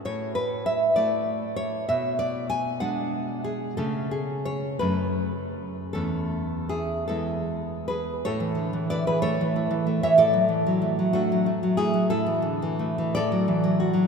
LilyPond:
\new Staff \with { instrumentName = "Nylon-string guitar" } { \time 6/8 \key a \major \tempo 4. = 62 << { cis''8 b'8 e''8 d''4 cis''8 | e''8 d''8 gis''8 fis''4 gis'8 | a'8 gis'8 cis''8 b'4. | a'4 <e' gis'>8 <e' a'>4 <gis' b'>8 |
<a' cis''>4 <b' d''>16 <gis' b'>16 <a' cis''>4~ <a' cis''>16 <cis'' e''>16 | <a' d''>4. <d' fis'>8 r8 <e' gis'>8 | <e' a'>4. <a' d''>4. | } \\ { a,4. <a e'>4. | b,4. <gis d'>4. | <cis a cis'>4. <fis, a cis'>4. | <e, a cis'>4. <e, gis b>4. |
a,16 e16 d16 e16 e'16 e16 a16 e16 e'16 e16 a16 e16 | a,16 fis16 e16 fis16 a16 fis16 a16 fis16 a16 fis16 a16 fis16 | a,16 e16 d16 e16 a16 e16 a,16 fis16 e16 fis16 fis'16 fis16 | } >> }